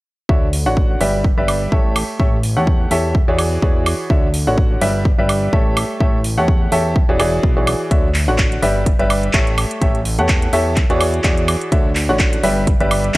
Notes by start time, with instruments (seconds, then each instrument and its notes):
0.29 analog synth bass D2, grand piano D3 F#4 C#5 D5 E5, kick
0.53 open hi-hat
0.66 analog synth bass A1, grand piano D3 F#4 C#5 D5 F#5
0.77 kick
1.01 analog synth bass G1, grand piano G3 G4 B4 D5 E5, open hi-hat
1.24 kick
1.38 analog synth bass G1, grand piano G3 G4 B4 D5 E5
1.48 open hi-hat, high woodblock
1.72 analog synth bass A1, grand piano A3 G4 A4 C#5 E5, kick
1.96 open hi-hat, high woodblock
2.19 analog synth bass A1, grand piano A3 G4 A4 C#5 E5, kick
2.43 open hi-hat
2.57 analog synth bass E2, grand piano A3 G4 A4 C#5 F#5
2.67 kick
2.91 analog synth bass E2, grand piano G4 A4 C#5 E5, open hi-hat
3.15 kick
3.28 analog synth bass E2, grand piano E3 F#4 G#4 C#5 D5
3.39 open hi-hat, high woodblock
3.62 analog synth bass E2, grand piano E3 F#4 G#4 C#5 D5, kick
3.86 open hi-hat, high woodblock
4.10 analog synth bass D2, grand piano D3 F#4 C#5 D5 E5, kick
4.34 open hi-hat
4.47 analog synth bass A1, grand piano D3 F#4 C#5 D5 F#5
4.58 kick
4.81 analog synth bass G1, grand piano G3 G4 B4 D5 E5, open hi-hat
5.05 kick
5.18 analog synth bass G1, grand piano G3 G4 B4 D5 E5
5.29 open hi-hat, high woodblock
5.53 analog synth bass A1, grand piano A3 G4 A4 C#5 E5, kick
5.77 open hi-hat, high woodblock
6.00 analog synth bass A1, grand piano A3 G4 A4 C#5 E5, kick
6.24 open hi-hat
6.38 analog synth bass E2, grand piano A3 G4 A4 C#5 F#5
6.48 kick
6.72 analog synth bass E2, grand piano G4 A4 C#5 E5, open hi-hat
6.96 kick
7.09 analog synth bass E1, grand piano E3 F#4 G#4 C#5 D5
7.20 grand piano E3 F#4 G#4 C#5 D5, open hi-hat, high woodblock
7.43 analog synth bass B1, kick
7.57 grand piano E3 F#4 G#4 C#5 D5
7.67 open hi-hat, high woodblock
7.91 analog synth bass D2, grand piano D3 F#4 C#5 D5 E5, kick, closed hi-hat
8.14 clap, open hi-hat
8.28 analog synth bass A1, grand piano D3 F#4 C#5 D5 F#5
8.38 kick, clap, closed hi-hat
8.52 closed hi-hat
8.62 analog synth bass G1, grand piano G3 G4 B4 D5 E5, open hi-hat
8.86 kick, closed hi-hat
8.99 analog synth bass G1, grand piano G3 G4 B4 D5 E5, closed hi-hat
9.10 open hi-hat, high woodblock
9.23 closed hi-hat
9.33 analog synth bass A1, grand piano A3 G4 A4 C#5 E5, kick, clap, closed hi-hat
9.47 closed hi-hat
9.58 open hi-hat, high woodblock
9.71 closed hi-hat
9.82 analog synth bass A1, grand piano A3 G4 A4 C#5 E5, kick, closed hi-hat
9.95 closed hi-hat
10.05 open hi-hat
10.19 analog synth bass E2, grand piano A3 G4 A4 C#5 F#5, closed hi-hat
10.29 kick, clap, closed hi-hat
10.42 closed hi-hat
10.53 analog synth bass E2, grand piano G4 A4 C#5 E5, open hi-hat
10.76 kick, clap, closed hi-hat
10.90 analog synth bass E2, grand piano E3 F#4 G#4 C#5 D5, closed hi-hat
11.01 open hi-hat, high woodblock
11.14 closed hi-hat
11.24 analog synth bass E2, grand piano E3 F#4 G#4 C#5 D5, kick, clap, closed hi-hat
11.38 closed hi-hat
11.48 open hi-hat, high woodblock
11.61 closed hi-hat
11.72 analog synth bass D2, grand piano D3 F#4 C#5 D5 E5, kick, closed hi-hat
11.95 clap, open hi-hat
12.09 analog synth bass A1, grand piano D3 F#4 C#5 D5 F#5
12.19 kick, clap, closed hi-hat
12.33 closed hi-hat
12.43 analog synth bass G1, grand piano G3 G4 B4 D5 E5, open hi-hat
12.67 kick, closed hi-hat
12.80 analog synth bass G1, grand piano G3 G4 B4 D5 E5, closed hi-hat
12.91 open hi-hat, high woodblock
13.04 closed hi-hat
13.14 clap